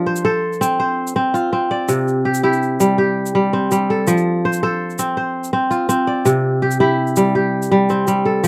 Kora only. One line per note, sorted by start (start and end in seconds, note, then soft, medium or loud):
0.00 1.94 F3 medium
0.00 1.10 D4 medium
0.00 1.12 F4 medium
0.00 0.57 G4 medium
0.00 0.24 A4 medium
0.00 0.31 A#4 medium
0.06 0.24 C5 medium
0.25 1.56 A4 medium
0.25 0.79 C5 medium
0.61 1.15 C4 medium
0.80 1.98 C5 medium
1.16 1.52 C4 medium
1.34 2.49 F4 medium
1.53 3.33 C4 medium
1.71 2.82 D5 medium
1.89 4.13 C3 medium
2.25 2.43 G4 medium
2.43 4.00 E4 medium
2.43 2.98 G4 medium
2.80 3.34 G3 medium
2.98 4.39 G4 medium
3.35 3.70 G3 medium
3.53 4.99 C4 medium
3.72 4.13 G3 medium
3.90 4.63 A4 medium
4.07 6.31 F3 medium
4.45 4.63 C5 medium
4.63 5.95 A4 medium
4.63 5.17 C5 medium
4.99 5.53 C4 medium
5.17 6.36 C5 medium
5.53 5.88 C4 medium
5.71 6.86 F4 medium
5.89 7.69 C4 medium
6.07 7.18 D5 medium
6.25 8.48 C3 medium
6.62 6.80 G4 medium
6.80 8.37 E4 medium
6.80 7.35 G4 medium
7.17 7.70 G3 medium
7.35 8.48 G4 medium
7.71 8.06 G3 medium
7.90 8.48 C4 medium
8.08 8.48 G3 medium
8.25 8.48 A4 medium
8.44 8.48 F3 medium